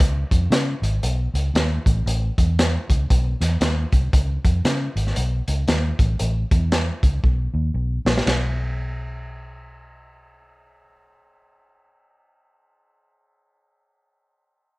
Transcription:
0.00 fingered electric bass C#2, kick, closed hi-hat
0.31 fingered electric bass F2, kick, closed hi-hat
0.50 fingered electric bass C#3, snare, closed hi-hat
0.82 fingered electric bass G#1, closed hi-hat
1.03 fingered electric bass B1, closed hi-hat
1.34 fingered electric bass C#2, closed hi-hat
1.54 fingered electric bass D#2, snare, closed hi-hat
1.86 fingered electric bass A1, kick, closed hi-hat
2.06 fingered electric bass A1, closed hi-hat
2.38 fingered electric bass E2, kick, closed hi-hat
2.59 snare, closed hi-hat
2.89 fingered electric bass C#2, kick, closed hi-hat
3.10 fingered electric bass B1, kick, closed hi-hat
3.41 fingered electric bass E2, snare, closed hi-hat
3.61 fingered electric bass D#2, snare, closed hi-hat
3.92 fingered electric bass C2, kick, closed hi-hat
4.13 fingered electric bass C#2, kick, closed hi-hat
4.45 fingered electric bass F2, kick, closed hi-hat
4.65 fingered electric bass C#3, snare, closed hi-hat
4.96 fingered electric bass G#1, closed hi-hat
5.07 snare
5.16 fingered electric bass B1, closed hi-hat
5.48 fingered electric bass C#2, closed hi-hat
5.68 fingered electric bass D#2, snare, closed hi-hat
5.99 fingered electric bass A1, kick, closed hi-hat
6.19 fingered electric bass A1, closed hi-hat
6.51 fingered electric bass E2, kick, closed hi-hat
6.72 snare, closed hi-hat
7.03 fingered electric bass C#2, kick, closed hi-hat
7.24 fingered electric bass B1, kick
7.54 fingered electric bass D#2
7.74 fingered electric bass B1
8.05 fingered electric bass A#1, snare
8.18 snare
8.26 fingered electric bass B1, snare, ride bell

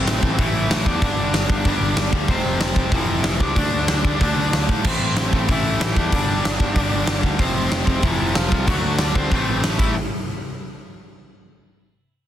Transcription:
Already playing: distorted electric guitar A2 E3 A3, lead electric guitar C4 C5
0.05 picked electric bass A1, snare, open hi-hat
0.22 picked electric bass A1, kick
0.38 picked electric bass A1, distorted electric guitar A2 E3 A3, lead electric guitar E3, kick, open hi-hat
0.43 lead electric guitar E4
0.55 picked electric bass A1
0.70 picked electric bass A1, lead electric guitar E3 E4, snare, open hi-hat
0.86 picked electric bass E2, lead electric guitar D4 D5, kick
1.02 picked electric bass G1, distorted electric guitar G2 D3 G3, kick, open hi-hat
1.17 picked electric bass G1
1.33 picked electric bass G1, snare, open hi-hat
1.49 picked electric bass G1, kick
1.65 picked electric bass G1, distorted electric guitar G2 D3 G3, kick, open hi-hat
1.81 picked electric bass G1
1.96 picked electric bass G1, snare, open hi-hat
2.12 picked electric bass D2, kick
2.28 picked electric bass F1, distorted electric guitar F2 C3 F3, lead electric guitar C4 C5, kick, open hi-hat
2.44 picked electric bass F1
2.60 picked electric bass F1, snare, open hi-hat
2.75 picked electric bass F1, kick
2.92 picked electric bass F1, distorted electric guitar F2 C3, lead electric guitar E3 E4, kick, open hi-hat
2.96 distorted electric guitar F3
3.08 picked electric bass F1
3.24 picked electric bass F1, lead electric guitar E3 E4, snare
3.40 picked electric bass C#2, lead electric guitar D4 D5, kick
3.56 picked electric bass D2, distorted electric guitar D3 A3 D4, kick, open hi-hat
3.73 picked electric bass D2
3.88 picked electric bass D2, snare, open hi-hat
4.04 picked electric bass D2, kick
4.21 picked electric bass D2, distorted electric guitar D3 A3 D4, kick, open hi-hat
4.36 picked electric bass D2
4.53 picked electric bass D2, snare, open hi-hat
4.69 picked electric bass A2, kick
4.84 picked electric bass A1, distorted electric guitar A2 E3 A3, lead electric guitar C4 C5, kick, crash
5.01 picked electric bass A1
5.16 picked electric bass A1, snare, open hi-hat
5.33 picked electric bass A1, kick
5.48 picked electric bass A1, distorted electric guitar A2 E3, lead electric guitar E3 E4, kick, open hi-hat
5.53 distorted electric guitar A3
5.65 picked electric bass A1
5.80 picked electric bass A1, lead electric guitar E3 E4, snare, open hi-hat
5.96 picked electric bass E2, lead electric guitar D4 D5, kick
6.12 picked electric bass G1, distorted electric guitar G2 D3 G3, kick, open hi-hat
6.29 picked electric bass G1
6.45 picked electric bass G1, snare, open hi-hat
6.60 picked electric bass G1, kick
6.75 picked electric bass G1, distorted electric guitar G2 D3, kick, open hi-hat
6.80 distorted electric guitar G3
6.92 picked electric bass G1
7.07 picked electric bass G1, snare, open hi-hat
7.23 picked electric bass D2, kick
7.39 picked electric bass F1, distorted electric guitar F2 C3 F3, lead electric guitar C4 C5, kick, open hi-hat
7.56 picked electric bass F1
7.71 picked electric bass F1, snare
7.87 picked electric bass F1, kick
8.02 picked electric bass F1, distorted electric guitar F2 C3, lead electric guitar E3 E4, kick, open hi-hat
8.06 distorted electric guitar F3
8.20 picked electric bass F1
8.35 picked electric bass F1, lead electric guitar F3 F4, snare, open hi-hat
8.51 picked electric bass C2, kick
8.67 picked electric bass D2, distorted electric guitar D3 A3, lead electric guitar F#3 F#4, kick, open hi-hat
8.72 distorted electric guitar D4
8.84 picked electric bass D2
8.98 picked electric bass D2, lead electric guitar D4 D5, snare, open hi-hat
9.14 picked electric bass D2, lead electric guitar C4 C5, kick
9.31 picked electric bass A1, distorted electric guitar A2 E3, kick, open hi-hat
9.35 distorted electric guitar A3
9.49 picked electric bass A1
9.63 picked electric bass A1, snare, open hi-hat
9.78 picked electric bass A1, distorted electric guitar A2 E3, lead electric guitar E4, kick, crash
9.82 distorted electric guitar A3

